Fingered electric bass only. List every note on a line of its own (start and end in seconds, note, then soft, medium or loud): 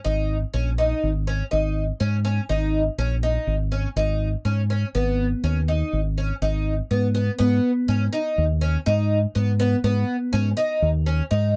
0.05 0.43 G#1 medium
0.54 0.92 A#1 medium
1.03 1.41 G#1 medium
1.52 1.90 G#1 medium
2.01 2.39 G#2 medium
2.49 2.88 G#1 medium
2.98 3.37 A#1 medium
3.47 3.86 G#1 medium
3.96 4.35 G#1 medium
4.45 4.84 G#2 medium
4.95 5.33 G#1 medium
5.43 5.82 D#2 medium
5.93 6.31 G#1 medium
6.42 6.80 G#1 medium
6.91 7.29 G#2 medium
7.40 7.59 G#2 medium
7.89 8.08 G#2 medium
8.38 8.76 D#2 medium
8.87 9.25 G#2 medium
9.36 9.74 G#2 medium
9.84 10.03 G#2 medium
10.33 10.52 G#2 medium
10.82 11.21 D#2 medium
11.31 11.56 G#2 medium